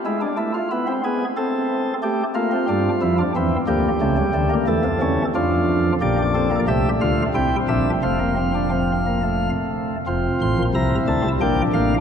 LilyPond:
<<
  \new Staff \with { instrumentName = "Pipe organ" } { \time 3/4 \key d \minor \tempo 4 = 90 << { r2. | r2. | r2. | \key f \major d''4 e''8 f''8 g''8 e''8 |
f''2~ f''8 r8 | r8 c'''8 bes''8 a''8 g''8 f''8 | } \\ { e'16 d'16 e'16 f'16 e'8 gis'8 a'4 | g'8 f'4. e'8 g'8~ | g'4 a'4 f'4 | g'8 a'8 g'8 f'8 e'8 d'8 |
c'2~ c'8 r8 | f'4 e'4 d'4 | } >> }
  \new Staff \with { instrumentName = "Pipe organ" } { \clef bass \time 3/4 \key d \minor << { gis8 a8 b16 c'16 b8 c'4 | a8 bes16 c'16 d'8 e'16 d'16 c'8 bes8 | a16 g16 a16 bes16 a8 cis'8 d'4 | \key f \major bes16 d'16 c'16 bes16 a4 c'4 |
a16 bes16 c'16 d'16 c'8 bes16 a4~ a16 | c'2 bes8 bes8 | } \\ { r2. | r8 a8 <g, g>8 <f, f>8 <e, e>8 <d, d>8 | <cis, cis>8 <d, d>8 <e, e>16 <f, f>16 <e, e>8 <f, f>4 | <bes,, bes,>4 <c, c>8 <d, d>8 <c, c>8 <bes,, bes,>8 |
<f,, f,>2~ <f,, f,>8 r8 | <f,, f,>8 <a,, a,>16 <bes,, bes,>16 <c, c>8 <d, d>16 <c, c>16 <bes,, bes,>8 <a,, a,>8 | } >> }
>>